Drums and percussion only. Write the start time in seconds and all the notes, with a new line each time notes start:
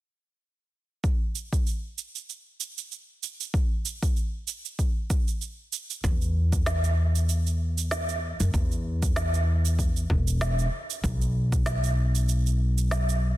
1.04 kick, shaker
1.35 shaker
1.53 kick, shaker
1.67 shaker
1.98 shaker
2.15 shaker
2.29 shaker
2.60 shaker
2.78 shaker
2.92 shaker
3.23 shaker
3.40 shaker
3.54 kick, shaker
3.85 shaker
4.03 kick, shaker
4.17 shaker
4.48 shaker
4.65 shaker
4.79 kick, shaker
5.10 kick, shaker
5.28 shaker
5.41 shaker
5.73 shaker
5.90 shaker
6.04 kick, shaker
6.22 shaker
6.53 kick, shaker
6.66 snare, shaker
6.84 shaker
7.15 shaker
7.29 shaker
7.47 shaker
7.78 shaker
7.91 snare, shaker
8.09 shaker
8.40 shaker
8.54 kick, shaker
8.72 shaker
9.03 kick, shaker
9.16 snare, shaker
9.34 shaker
9.65 shaker
9.79 kick, shaker
9.96 shaker
10.10 kick
10.27 shaker
10.41 snare, shaker
10.59 shaker
10.90 shaker
11.04 kick, shaker
11.21 shaker
11.52 kick, shaker
11.66 snare, shaker
11.84 shaker
12.15 shaker
12.29 shaker
12.47 shaker
12.78 shaker
12.91 snare, shaker
13.09 shaker